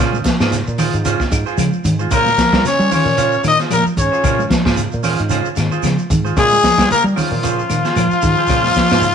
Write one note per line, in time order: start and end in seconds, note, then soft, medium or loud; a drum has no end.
0.00 0.20 A#2 loud
0.00 0.19 C#3 loud
0.00 0.16 C#4 medium
0.00 0.16 F4 medium
0.00 0.17 G#4 medium
0.00 0.17 C5 medium
0.13 high conga medium
0.13 shekere soft
0.24 0.46 F3 medium
0.24 kick medium
0.24 snare medium
0.24 closed hi-hat soft
0.24 high conga loud
0.24 shekere medium
0.40 0.61 G#2 medium
0.40 0.56 F4 soft
0.40 0.55 G#4 medium
0.40 0.55 C5 medium
0.40 snare medium
0.40 claves medium
0.40 shekere soft
0.52 0.72 C#3 medium
0.52 snare soft
0.52 closed hi-hat medium
0.52 high conga soft
0.52 shekere medium
0.67 0.88 A#2 loud
0.67 shekere soft
0.78 0.98 D#3 medium
0.78 0.96 F4 medium
0.78 0.96 G#4 medium
0.78 0.96 C5 medium
0.78 muted clean electric guitar stroke medium
0.78 open hi-hat medium
0.78 low conga medium
0.78 claves medium
0.78 shekere medium
0.93 1.14 G#2 medium
0.93 closed hi-hat soft
0.93 shekere soft
1.05 1.25 C#3 medium
1.05 1.22 C#4 medium
1.05 1.23 F4 medium
1.05 1.23 G#4 medium
1.05 1.23 C5 medium
1.05 closed hi-hat medium
1.05 shekere loud
1.20 kick medium
1.20 snare soft
1.20 shekere soft
1.32 1.43 G#2 medium
1.32 kick medium
1.32 closed hi-hat medium
1.32 high conga medium
1.32 claves medium
1.32 shekere medium
1.46 1.62 F4 soft
1.46 1.62 G#4 medium
1.46 1.61 C5 medium
1.46 shekere soft
1.58 1.70 C#3 medium
1.58 1.78 F3 medium
1.58 closed hi-hat medium
1.58 high conga medium
1.58 claves medium
1.58 shekere medium
1.73 shekere soft
1.84 2.06 G#2 medium
1.84 2.05 D#3 medium
1.84 closed hi-hat medium
1.84 high conga medium
1.84 low conga medium
1.84 shekere medium
1.99 2.11 F4 soft
1.99 2.11 G#4 soft
1.99 2.11 C5 soft
1.99 shekere soft
2.11 2.32 A#2 medium
2.11 2.31 C#3 loud
2.11 2.62 A#3 medium
2.11 2.29 C#4 medium
2.11 2.29 F4 medium
2.11 2.29 G#4 medium
2.11 2.62 A#4 loud
2.11 2.29 C5 medium
2.11 kick medium
2.11 closed hi-hat medium
2.11 claves medium
2.11 shekere medium
2.26 snare soft
2.26 high conga medium
2.26 shekere soft
2.38 2.58 F3 medium
2.38 kick medium
2.38 snare medium
2.38 closed hi-hat medium
2.38 high conga loud
2.38 shekere medium
2.53 2.62 G3 medium
2.53 2.68 F4 soft
2.53 2.68 G#4 soft
2.53 2.68 C5 medium
2.53 kick medium
2.53 snare medium
2.53 claves medium
2.53 shekere soft
2.64 2.84 C#3 medium
2.64 2.91 C#4 medium
2.64 2.91 C#5 loud
2.64 muted fingered electric bass stroke soft
2.64 snare soft
2.64 closed hi-hat medium
2.64 shekere medium
2.79 2.89 G3 medium
2.79 shekere soft
2.91 3.11 D#3 medium
2.91 3.08 C#4 medium
2.91 3.42 C#4 medium
2.91 3.09 F4 medium
2.91 3.09 G#4 medium
2.91 3.09 C5 medium
2.91 3.43 C#5 loud
2.91 open hi-hat medium
2.91 low conga medium
2.91 claves medium
2.91 shekere medium
3.05 3.36 A#2 loud
3.05 shekere soft
3.17 3.37 C#3 medium
3.17 3.35 C#4 medium
3.17 3.35 F4 medium
3.17 3.35 C5 medium
3.17 muted clean electric guitar stroke medium
3.17 closed hi-hat medium
3.17 shekere medium
3.32 shekere soft
3.43 3.56 A#2 loud
3.43 3.64 D#3 medium
3.43 3.58 D#4 medium
3.43 closed hi-hat medium
3.43 high conga medium
3.43 claves medium
3.43 shekere medium
3.48 3.59 D#5 loud
3.59 3.75 F4 soft
3.59 3.75 G#4 soft
3.59 3.74 C5 medium
3.59 snare soft
3.59 closed hi-hat soft
3.59 shekere soft
3.70 3.83 A#2 loud
3.70 3.90 F3 loud
3.70 3.85 A#3 medium
3.70 3.85 A#4 medium
3.70 snare soft
3.70 closed hi-hat medium
3.70 high conga medium
3.70 claves medium
3.70 shekere medium
3.86 muted fingered electric bass stroke soft
3.86 shekere soft
3.97 4.09 G#2 medium
3.97 4.48 C#4 medium
3.97 4.48 C#5 medium
3.97 kick medium
3.97 closed hi-hat medium
3.97 high conga medium
3.97 low conga medium
3.97 shekere medium
4.12 4.23 F4 soft
4.12 4.24 G#4 soft
4.12 4.24 C5 medium
4.12 shekere soft
4.23 4.45 A#2 medium
4.23 4.44 C#3 loud
4.23 4.41 C#4 medium
4.23 4.41 F4 medium
4.23 4.42 G#4 medium
4.23 4.42 C5 medium
4.23 kick medium
4.23 closed hi-hat medium
4.23 high conga soft
4.23 claves medium
4.23 shekere medium
4.39 high conga medium
4.39 shekere soft
4.50 4.70 F3 medium
4.50 kick medium
4.50 snare medium
4.50 closed hi-hat medium
4.50 high conga loud
4.50 shekere medium
4.65 4.86 G#2 medium
4.65 4.81 F4 medium
4.65 4.81 G#4 medium
4.65 4.80 C5 medium
4.65 kick medium
4.65 snare medium
4.65 claves medium
4.65 shekere soft
4.76 4.97 C#3 medium
4.76 closed hi-hat medium
4.76 shekere medium
4.92 5.14 A#2 loud
4.92 shekere soft
5.03 5.21 C#4 medium
5.03 5.21 F4 medium
5.03 5.21 G#4 medium
5.03 5.21 C5 medium
5.03 open hi-hat medium
5.03 low conga medium
5.03 claves medium
5.03 shekere medium
5.18 5.40 G#2 medium
5.18 closed hi-hat soft
5.18 shekere soft
5.30 5.50 C#3 medium
5.30 5.47 C#4 medium
5.30 5.48 F4 medium
5.30 5.48 G#4 medium
5.30 5.48 C5 medium
5.30 closed hi-hat medium
5.30 high conga soft
5.30 shekere medium
5.45 shekere soft
5.56 5.69 G#2 medium
5.56 5.77 D#3 medium
5.56 snare soft
5.56 closed hi-hat medium
5.56 high conga medium
5.56 claves medium
5.56 shekere medium
5.72 5.87 F4 soft
5.72 5.87 G#4 medium
5.72 5.87 C5 medium
5.72 shekere soft
5.83 5.95 C#3 loud
5.83 6.03 F3 medium
5.83 snare soft
5.83 closed hi-hat medium
5.83 high conga medium
5.83 claves medium
5.83 shekere medium
5.98 shekere soft
6.10 6.31 G#2 medium
6.10 6.30 D#3 medium
6.10 kick medium
6.10 closed hi-hat medium
6.10 high conga medium
6.10 low conga medium
6.10 shekere medium
6.25 6.36 F4 soft
6.25 6.36 G#4 soft
6.25 6.37 C5 medium
6.25 shekere soft
6.37 6.58 A#2 loud
6.37 6.57 C#3 loud
6.37 6.87 G#3 loud
6.37 6.54 C#4 medium
6.37 6.54 F4 medium
6.37 6.88 G#4 loud
6.37 6.55 C5 medium
6.37 muted clean electric guitar stroke medium
6.37 kick medium
6.37 snare soft
6.37 closed hi-hat medium
6.37 claves medium
6.37 shekere medium
6.52 high conga medium
6.52 shekere soft
6.63 6.83 F3 medium
6.63 kick medium
6.63 snare medium
6.63 closed hi-hat medium
6.63 high conga loud
6.63 shekere medium
6.78 6.87 G3 loud
6.78 6.94 F4 soft
6.78 6.93 G#4 medium
6.78 6.93 C5 medium
6.78 kick medium
6.78 snare medium
6.78 claves medium
6.78 shekere soft
6.89 7.10 C#3 medium
6.89 7.04 A#3 loud
6.89 7.03 A#4 loud
6.89 muted fingered electric bass stroke soft
6.89 closed hi-hat medium
6.89 shekere medium
7.04 7.14 G3 medium
7.04 shekere soft
7.16 7.37 D#3 medium
7.16 9.15 F3 medium
7.16 7.33 C#4 medium
7.16 7.34 F4 medium
7.16 9.15 F4 loud
7.16 7.34 G#4 medium
7.16 7.34 C5 medium
7.16 open hi-hat medium
7.16 low conga medium
7.16 claves medium
7.16 shekere medium
7.31 7.62 A#2 medium
7.31 shekere soft
7.43 7.63 C#3 medium
7.43 7.60 C#4 medium
7.43 7.60 F4 medium
7.43 7.61 G#4 medium
7.43 7.61 C5 medium
7.43 closed hi-hat medium
7.43 high conga soft
7.43 shekere loud
7.59 shekere soft
7.69 7.82 A#2 medium
7.69 7.90 D#3 medium
7.69 closed hi-hat medium
7.69 high conga medium
7.69 claves medium
7.69 shekere medium
7.85 8.00 F4 soft
7.85 8.00 G#4 medium
7.85 7.99 C5 medium
7.85 snare soft
7.85 closed hi-hat soft
7.85 shekere soft
7.96 8.08 A#2 loud
7.96 8.17 F3 medium
7.96 closed hi-hat medium
7.96 high conga medium
7.96 claves medium
7.96 shekere medium
8.11 muted fingered electric bass stroke soft
8.11 shekere soft
8.22 8.35 G#2 medium
8.22 8.43 D#3 medium
8.22 kick medium
8.22 closed hi-hat medium
8.22 low conga medium
8.22 shekere medium
8.36 8.49 G#4 medium
8.36 8.49 C5 medium
8.36 shekere soft
8.40 8.49 F4 soft
8.47 8.70 A#2 loud
8.47 8.69 C#3 loud
8.47 8.67 C#4 medium
8.47 8.67 F4 medium
8.47 8.67 G#4 medium
8.47 8.67 C5 medium
8.47 kick loud
8.47 closed hi-hat medium
8.47 claves medium
8.47 shekere medium
8.63 snare soft
8.63 high conga medium
8.63 shekere soft
8.74 8.96 F3 medium
8.74 muted fingered electric bass stroke soft
8.74 kick medium
8.74 snare medium
8.74 closed hi-hat medium
8.74 high conga loud
8.74 shekere medium
8.90 9.12 G#2 loud
8.90 9.07 F4 soft
8.90 9.06 G#4 medium
8.90 9.06 C5 medium
8.90 snare medium
8.90 claves medium
8.90 shekere soft
9.01 9.15 C#3 medium
9.01 closed hi-hat medium
9.01 shekere medium